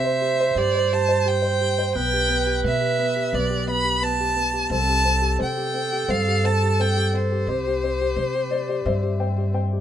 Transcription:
0.00 0.53 C3 medium
0.00 1.93 C4 medium
0.00 0.21 G4 medium
0.00 0.04 C5 medium
0.00 1.97 C5 loud
0.00 0.59 E5 medium
0.04 0.39 C5 soft
0.21 0.56 G4 soft
0.40 0.73 C5 medium
0.55 1.91 G2 medium
0.55 0.91 G4 medium
0.55 0.95 D5 medium
0.75 1.07 C5 soft
0.93 1.24 G4 medium
0.93 1.29 A5 medium
1.09 1.41 C5 soft
1.25 1.60 G4 medium
1.25 1.95 G5 medium
1.42 1.77 C5 medium
1.61 1.95 G4 soft
1.79 1.95 C5 soft
1.95 2.60 B1 medium
1.95 2.28 B3 medium
1.95 4.44 B4 loud
1.95 2.60 G5 loud
2.13 2.45 G4 soft
2.29 2.63 B3 medium
2.46 2.79 G4 medium
2.64 3.29 B2 medium
2.64 2.97 B3 medium
2.64 3.36 E5 medium
2.81 3.14 G4 soft
2.98 3.32 B3 medium
3.16 3.48 G4 medium
3.33 4.67 B1 medium
3.33 3.65 B3 medium
3.33 3.69 D5 medium
3.50 3.83 G4 medium
3.67 4.00 B3 medium
3.67 4.05 B5 loud
3.84 4.19 G4 soft
4.02 4.35 B3 medium
4.02 4.71 A5 loud
4.20 4.52 G4 medium
4.36 4.70 B3 medium
4.53 4.70 G4 medium
4.70 5.36 C2 loud
4.70 5.04 C4 medium
4.70 7.51 A4 loud
4.70 5.37 A5 loud
4.89 5.20 G4 soft
5.05 5.37 C4 medium
5.22 5.56 G4 medium
5.39 6.05 C3 medium
5.39 5.72 C4 medium
5.43 6.12 G5 medium
5.57 5.91 G4 medium
5.74 6.07 C4 medium
5.92 6.26 G4 medium
6.08 7.43 G2 medium
6.08 6.43 C4 medium
6.08 6.47 F5 loud
6.28 6.61 G4 medium
6.44 6.78 C4 medium
6.44 6.82 A5 medium
6.63 6.95 G4 soft
6.80 7.12 C4 medium
6.80 7.17 G5 loud
6.96 7.30 G4 medium
7.13 7.47 C4 medium
7.13 9.58 C5 medium
7.32 7.48 G4 medium
7.47 8.13 C2 medium
7.47 7.82 C4 medium
7.47 9.80 G4 medium
7.67 8.00 G4 soft
7.84 8.16 C4 medium
8.01 8.33 G4 soft
8.16 8.82 C3 medium
8.16 8.50 C4 medium
8.35 8.67 G4 soft
8.51 8.85 C4 soft
8.51 8.67 D5 medium
8.69 9.01 G4 soft
8.69 8.85 D5 medium
8.86 9.80 G2 loud
8.86 9.19 C4 medium
8.86 9.19 E5 medium
9.03 9.36 G4 soft
9.20 9.52 C4 medium
9.20 9.53 G5 medium
9.38 9.71 G4 medium
9.54 9.80 C4 medium
9.54 9.80 G5 medium
9.73 9.80 G4 soft

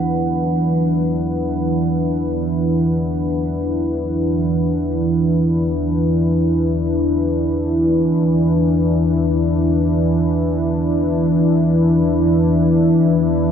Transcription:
0.00 13.52 E2 medium
0.00 13.52 E3 medium
0.00 13.52 F#3 medium
0.00 13.52 D4 medium
0.00 13.52 E4 medium
0.00 13.52 B4 medium
0.00 13.52 F#5 medium

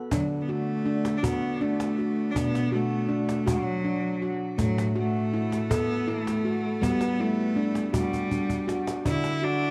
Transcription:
0.00 0.12 A4 medium
0.11 2.32 D3 medium
0.11 0.26 F#3 medium
0.11 0.49 D4 medium
0.11 cajon bass medium
0.41 0.51 B3 medium
0.49 1.19 A3 medium
0.49 0.87 F#4 medium
0.86 1.24 D4 medium
1.05 cajon slap soft
1.17 1.25 D4 medium
1.23 1.64 B3 medium
1.23 1.61 F#4 medium
1.23 cajon bass medium
1.61 2.32 A3 medium
1.61 1.99 D4 medium
1.61 cajon slap soft
1.80 cajon slap soft
1.98 2.36 F#4 medium
1.98 cajon slap soft
2.31 2.38 D4 medium
2.35 4.55 B2 medium
2.35 2.73 B3 medium
2.35 2.73 D4 medium
2.35 cajon bass medium
2.55 cajon slap soft
2.72 3.50 A3 medium
2.72 3.10 F#4 medium
3.09 3.47 D4 medium
3.29 cajon slap soft
3.46 4.31 F#3 medium
3.46 3.84 F#4 medium
3.46 cajon bass medium
3.84 4.22 D4 medium
3.84 cajon slap soft
4.22 4.59 F#4 medium
4.22 cajon slap soft
4.58 6.78 A2 medium
4.58 4.93 F#3 medium
4.58 4.96 A3 medium
4.58 cajon bass medium
4.78 cajon slap soft
4.95 5.73 A3 medium
4.95 5.33 F#4 medium
5.33 5.71 E4 medium
5.52 cajon slap soft
5.71 6.10 B3 medium
5.71 6.08 A4 medium
5.71 cajon bass medium
6.08 6.84 A3 medium
6.08 6.45 E4 medium
6.08 cajon slap soft
6.27 cajon slap soft
6.45 6.82 F#4 medium
6.45 cajon slap soft
6.81 9.01 G3 medium
6.81 7.19 B3 medium
6.81 7.22 B3 medium
6.81 cajon bass soft
7.01 cajon slap soft
7.20 7.95 A3 medium
7.20 7.57 E4 medium
7.56 7.94 D4 medium
7.75 cajon slap soft
7.93 8.78 G3 medium
7.93 8.31 F#4 medium
7.93 cajon bass medium
8.13 cajon bass soft
8.31 8.68 D4 medium
8.31 cajon bass soft
8.50 cajon bass soft
8.68 9.05 F#4 medium
8.68 cajon slap soft
8.87 cajon slap soft
9.05 9.71 D3 medium
9.05 9.43 D4 medium
9.05 9.45 E4 medium
9.05 cajon bass medium
9.24 cajon slap soft
9.43 9.71 D4 loud
9.43 9.71 F#4 medium

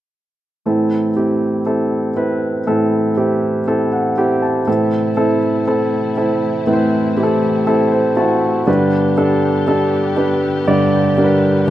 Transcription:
0.66 2.63 A2 medium
0.66 2.62 E3 medium
0.66 1.10 C4 medium
0.66 1.10 E4 medium
0.66 1.10 A4 medium
1.16 1.60 C4 medium
1.16 1.60 E4 medium
1.16 1.60 G4 medium
1.66 2.10 C4 medium
1.66 2.10 E4 medium
1.66 2.10 A4 medium
2.16 2.60 C4 medium
2.16 2.60 E4 medium
2.16 2.61 B4 medium
2.67 4.63 A2 medium
2.67 4.63 E3 medium
2.67 3.11 C4 medium
2.67 3.11 E4 medium
2.67 3.11 A4 medium
3.17 3.61 C4 medium
3.17 3.61 E4 medium
3.17 3.61 G4 medium
3.67 4.11 C4 medium
3.67 4.11 E4 medium
3.67 4.11 A4 medium
3.92 4.15 F#5 medium
4.17 4.61 C4 medium
4.17 4.61 E4 medium
4.17 4.62 G4 medium
4.17 4.41 G5 medium
4.42 4.66 A5 medium
4.66 5.38 A2 medium
4.66 8.64 C3 medium
4.66 8.64 E3 medium
4.66 5.38 E3 medium
4.66 8.64 A3 medium
4.66 5.11 C4 medium
4.66 8.64 E4 medium
4.66 5.11 E4 medium
4.66 5.11 A4 medium
5.17 5.61 C4 medium
5.17 5.61 E4 medium
5.17 5.61 A4 medium
5.67 6.11 C4 medium
5.67 6.11 E4 medium
5.67 6.11 A4 medium
6.17 6.61 C4 medium
6.17 6.61 E4 medium
6.17 6.61 A4 medium
6.67 7.38 A2 medium
6.67 7.38 E3 medium
6.67 7.11 C4 medium
6.67 7.11 E4 medium
6.67 6.73 B4 medium
6.73 7.14 C5 medium
7.17 7.61 C4 medium
7.17 7.61 E4 medium
7.17 7.23 G4 medium
7.23 7.64 A4 medium
7.66 8.11 C4 medium
7.66 8.11 E4 medium
7.66 8.11 A4 medium
7.92 8.15 C5 medium
8.16 8.61 C4 medium
8.16 8.61 E4 medium
8.16 8.61 F#4 medium
8.16 8.64 A5 medium
8.67 9.39 G2 medium
8.67 9.39 D3 medium
8.67 11.70 D3 medium
8.67 11.70 G3 medium
8.67 11.70 B3 medium
8.67 9.11 D4 medium
8.67 9.11 G4 medium
8.67 11.70 G4 medium
8.67 9.12 B4 medium
9.17 9.62 D4 medium
9.17 9.62 G4 medium
9.17 9.62 A4 medium
9.68 10.12 D4 medium
9.68 10.12 G4 medium
9.68 10.12 A4 medium
10.17 10.61 D4 medium
10.17 10.61 G4 medium
10.17 10.62 B4 medium
10.68 11.39 G2 medium
10.68 11.39 D3 medium
10.68 11.12 D4 medium
10.68 11.12 G4 medium
10.68 11.12 D5 medium
11.18 11.62 D4 medium
11.18 11.62 G4 medium
11.18 11.24 A#4 medium
11.24 11.65 B4 medium

